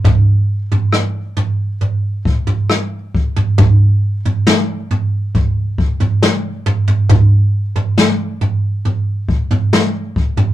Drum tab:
SD |----r-------r---|----o-------o---|----o-------o---|
FT |o--o--o-o--o---o|o--o--o-o--o--oo|o--o--o-o--o---o|
BD |o---------o---o-|o-------o-o-----|o---------o---o-|